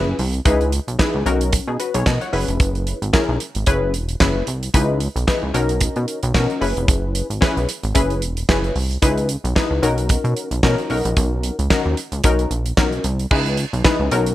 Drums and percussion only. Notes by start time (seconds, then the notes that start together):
0.19 open hi-hat
0.34 closed hi-hat
0.45 kick, closed hi-hat
0.61 closed hi-hat
0.72 closed hi-hat
0.88 closed hi-hat
0.99 kick, snare, clap
1.26 closed hi-hat
1.41 closed hi-hat
1.52 kick, closed hi-hat
1.80 closed hi-hat
1.94 closed hi-hat
2.06 kick, snare, clap
2.21 closed hi-hat
2.33 open hi-hat
2.48 closed hi-hat
2.60 kick, closed hi-hat
2.75 closed hi-hat
2.87 closed hi-hat
3.02 closed hi-hat
3.13 kick, snare, clap
3.40 closed hi-hat
3.55 closed hi-hat
3.66 kick, closed hi-hat
3.94 closed hi-hat
4.09 closed hi-hat
4.20 kick, snare, clap
4.47 closed hi-hat
4.63 closed hi-hat
4.74 kick, closed hi-hat
5.00 closed hi-hat
5.16 closed hi-hat
5.28 kick, snare, clap
5.54 closed hi-hat
5.69 closed hi-hat
5.81 kick, closed hi-hat
5.96 closed hi-hat
6.08 closed hi-hat
6.23 closed hi-hat
6.34 kick, snare, clap
6.50 closed hi-hat
6.62 open hi-hat
6.77 closed hi-hat
6.88 kick, closed hi-hat
7.15 closed hi-hat
7.31 closed hi-hat
7.42 kick, snare, clap
7.57 closed hi-hat
7.69 closed hi-hat
7.83 closed hi-hat
7.95 kick, closed hi-hat
8.10 closed hi-hat
8.22 closed hi-hat
8.37 closed hi-hat
8.49 kick, snare, clap
8.64 closed hi-hat
8.76 open hi-hat
8.91 closed hi-hat
9.02 kick, closed hi-hat
9.18 closed hi-hat
9.29 closed hi-hat
9.45 closed hi-hat
9.56 kick, snare, clap
9.83 closed hi-hat
9.98 closed hi-hat
10.09 kick, closed hi-hat
10.25 closed hi-hat
10.37 closed hi-hat
10.51 closed hi-hat
10.63 kick, snare, clap
10.78 closed hi-hat
10.90 open hi-hat
11.05 closed hi-hat
11.17 kick, closed hi-hat
11.43 closed hi-hat
11.59 closed hi-hat
11.70 kick, snare, clap
11.97 closed hi-hat
12.12 closed hi-hat
12.24 kick, closed hi-hat
12.39 closed hi-hat
12.51 closed hi-hat
12.66 closed hi-hat
12.77 kick, snare, clap
12.92 closed hi-hat
13.04 closed hi-hat
13.19 closed hi-hat
13.31 kick, crash
13.46 closed hi-hat
13.57 closed hi-hat
13.73 closed hi-hat
13.85 kick, snare, clap
14.11 closed hi-hat
14.26 closed hi-hat